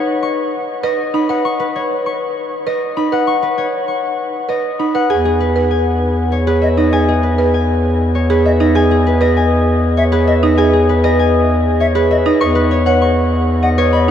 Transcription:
0.00 1.58 B4 medium
0.00 1.74 C#5 medium
0.00 0.82 D#5 medium
0.00 1.28 F#5 medium
0.00 1.13 B5 medium
0.00 0.21 C#6 medium
0.23 1.44 C#6 medium
0.83 1.03 B4 medium
0.83 2.65 D#5 medium
1.14 1.34 D#4 medium
1.14 2.95 B5 medium
1.29 1.49 B4 medium
1.29 3.11 F#5 medium
1.45 2.05 C#6 medium
1.60 3.41 B4 medium
1.76 3.57 C#5 medium
2.06 3.26 C#6 medium
2.67 2.86 B4 medium
2.67 4.48 D#5 medium
2.97 3.17 D#4 medium
2.97 4.78 B5 medium
3.12 3.32 B4 soft
3.12 4.94 F#5 medium
3.27 3.87 C#6 medium
3.42 5.39 B4 soft
3.58 5.11 C#5 medium
3.88 5.11 C#6 soft
4.49 4.69 B4 medium
4.49 6.76 D#5 medium
4.79 4.99 D#4 soft
4.79 8.69 B5 medium
4.95 5.15 B4 soft
4.95 5.11 F#5 medium
5.10 12.31 E2 medium
5.10 5.30 G#4 medium
5.10 5.69 G#5 medium
5.25 7.07 G#4 medium
5.40 6.46 B4 medium
5.56 5.76 B4 soft
5.71 6.91 G#5 medium
6.32 8.14 C#5 medium
6.47 6.67 G#4 medium
6.47 7.22 B4 medium
6.62 6.68 D#5 medium
6.62 8.44 E5 medium
6.77 6.97 D#4 medium
6.77 8.59 D#5 medium
6.93 7.13 G#4 medium
6.93 7.53 G#5 medium
7.08 8.90 G#4 medium
7.23 8.29 B4 medium
7.38 7.58 B4 medium
7.54 8.74 G#5 medium
8.15 9.96 C#5 medium
8.30 8.50 G#4 medium
8.30 9.05 B4 medium
8.45 8.51 D#5 medium
8.45 10.26 E5 medium
8.60 8.80 D#4 medium
8.60 9.20 D#5 medium
8.75 8.95 G#4 medium
8.75 9.35 G#5 medium
8.91 10.72 G#4 medium
9.06 10.11 B4 medium
9.21 9.41 B4 medium
9.21 10.42 D#5 medium
9.37 10.56 G#5 medium
9.97 11.79 C#5 medium
9.97 10.04 E5 medium
10.12 10.32 G#4 medium
10.12 10.88 B4 medium
10.27 10.34 D#5 medium
10.27 12.10 E5 medium
10.43 10.63 D#4 medium
10.43 11.03 D#5 medium
10.57 10.78 G#4 medium
10.57 11.18 G#5 medium
10.73 12.42 G#4 medium
10.89 11.94 B4 medium
11.04 11.24 B4 medium
11.04 12.24 D#5 medium
11.19 12.42 G#5 medium
11.80 12.42 C#5 medium
11.80 11.86 E5 medium
11.95 12.15 G#4 medium
11.95 12.54 B4 medium
12.11 12.17 D#5 medium
12.11 12.42 E5 medium
12.26 12.46 D#4 medium
12.26 13.61 D#5 medium
12.41 14.11 E2 medium
12.41 12.61 B4 medium
12.41 13.00 C#6 medium
12.55 14.11 B4 medium
12.71 13.77 C#5 medium
12.86 13.07 C#5 medium
12.86 14.08 F#5 medium
13.02 14.11 C#6 medium
13.63 14.11 D#5 medium
13.63 13.69 F#5 medium
13.78 13.98 B4 medium
13.78 14.11 C#5 medium
13.93 13.99 D#5 medium
13.93 14.11 B5 medium

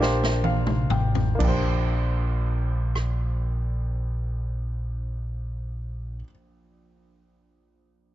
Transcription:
0.00 0.86 A#1 medium
0.00 1.43 A#2 soft
0.00 1.35 A#3 medium
0.00 0.41 D4 medium
0.00 1.39 D4 medium
0.00 0.41 G4 medium
0.00 1.42 G4 medium
0.00 0.45 A#4 medium
0.00 0.02 C5 medium
0.00 0.90 C5 medium
0.00 snare soft
0.23 snare soft
0.44 0.87 F5 medium
0.44 high tom medium
0.67 mid tom medium
0.90 1.36 A1 medium
0.90 1.37 G5 medium
0.90 mid tom medium
1.15 floor tom medium
1.35 6.16 A#3 medium
1.35 6.20 D4 medium
1.40 6.21 A#1 medium
1.40 6.22 A#1 medium
1.40 6.24 G4 medium
1.40 kick medium
1.40 crash medium
1.48 6.29 C5 medium
2.95 cross-stick soft

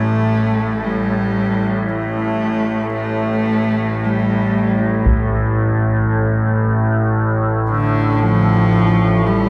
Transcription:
0.00 9.49 A1 medium
0.00 9.49 A2 medium
0.00 0.85 A3 medium
0.84 1.91 G3 medium
1.90 2.93 A3 medium
2.94 4.05 A3 medium
4.04 5.08 G3 medium
5.06 taiko soft
7.70 8.23 D3 medium
8.22 9.28 F3 medium
9.27 9.49 G3 medium

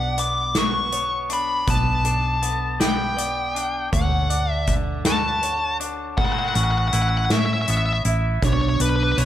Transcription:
0.00 1.64 B1 medium
0.00 1.30 B2 medium
0.00 0.18 B3 medium
0.00 1.29 D4 medium
0.00 0.55 B4 medium
0.00 0.96 D5 medium
0.00 0.21 F#5 medium
0.18 0.91 B3 medium
0.18 0.57 D6 medium
0.18 closed hi-hat medium
0.55 1.68 F#4 medium
0.55 0.93 B4 medium
0.55 1.33 C#6 medium
0.55 snare medium
0.55 closed hi-hat medium
0.92 1.66 B3 soft
0.92 1.68 C#5 medium
0.92 closed hi-hat soft
1.30 2.04 D4 medium
1.30 1.70 B5 medium
1.30 closed hi-hat soft
1.67 3.89 B1 medium
1.67 2.41 B3 medium
1.67 2.05 B4 medium
1.67 2.81 A5 medium
1.67 kick loud
1.67 closed hi-hat medium
2.05 3.54 D4 medium
2.05 2.80 A4 medium
2.05 closed hi-hat medium
2.42 3.16 B3 medium
2.42 closed hi-hat soft
2.80 3.93 G4 medium
2.80 3.17 B4 medium
2.80 3.89 G5 medium
2.80 snare medium
2.80 closed hi-hat medium
3.17 3.92 B3 medium
3.17 3.92 D5 medium
3.17 closed hi-hat medium
3.55 3.92 D4 medium
3.55 closed hi-hat soft
3.93 6.18 D2 medium
3.93 4.67 D3 medium
3.93 4.30 C#5 medium
3.93 4.52 F#5 medium
3.93 kick loud
3.93 closed hi-hat medium
4.30 5.79 D4 medium
4.30 5.05 D5 medium
4.30 closed hi-hat medium
4.52 4.74 E5 medium
4.67 5.42 D3 medium
4.67 kick medium
4.67 closed hi-hat medium
5.05 6.18 F#4 medium
5.05 5.43 B4 medium
5.05 5.77 A5 medium
5.05 snare medium
5.05 closed hi-hat medium
5.43 6.18 D3 medium
5.43 6.18 C#5 medium
5.43 closed hi-hat medium
5.80 6.17 D4 medium
5.80 closed hi-hat medium
6.17 6.52 A1 medium
6.17 8.05 A2 medium
6.17 6.93 A4 medium
6.17 6.25 F#5 medium
6.17 kick loud
6.17 crash medium
6.25 6.32 F#5 medium
6.33 6.39 F#5 medium
6.39 6.47 F#5 medium
6.49 6.54 F#5 medium
6.55 6.89 A1 medium
6.55 7.29 C#4 medium
6.55 6.62 F#5 medium
6.55 closed hi-hat medium
6.64 6.71 F#5 medium
6.71 6.78 F#5 medium
6.78 6.86 F#5 medium
6.88 6.95 F#5 medium
6.93 7.27 A1 medium
6.93 8.04 E4 medium
6.93 7.30 B4 medium
6.93 7.02 F#5 medium
6.93 closed hi-hat medium
7.02 7.09 F#5 medium
7.09 7.17 F#5 medium
7.18 7.25 F#5 medium
7.25 7.33 F#5 medium
7.30 7.64 A2 medium
7.30 8.42 C#4 medium
7.30 8.05 C#5 medium
7.30 7.38 E5 medium
7.30 snare loud
7.30 closed hi-hat medium
7.39 7.45 E5 soft
7.46 7.53 E5 medium
7.54 7.61 E5 medium
7.62 7.70 E5 medium
7.68 8.02 A1 medium
7.68 9.25 B3 medium
7.68 7.77 E5 medium
7.68 closed hi-hat medium
7.77 7.85 E5 medium
7.86 7.93 E5 soft
7.93 8.01 E5 medium
8.05 8.39 A1 medium
8.05 8.42 E4 medium
8.05 8.43 E5 medium
8.05 closed hi-hat soft
8.42 8.77 B1 medium
8.42 9.25 B2 medium
8.42 9.21 D4 medium
8.42 8.53 C#5 medium
8.42 kick medium
8.42 closed hi-hat medium
8.53 8.61 C#5 medium
8.61 8.69 C#5 medium
8.69 8.78 C#5 medium
8.80 9.14 B1 medium
8.80 9.25 D4 medium
8.80 8.89 B4 medium
8.80 closed hi-hat medium
8.90 8.96 B4 medium
8.96 9.03 B4 medium
9.03 9.11 B4 medium
9.12 9.19 B4 medium
9.17 9.25 B1 medium
9.17 9.25 B4 medium
9.17 9.25 C#5 medium
9.17 closed hi-hat medium

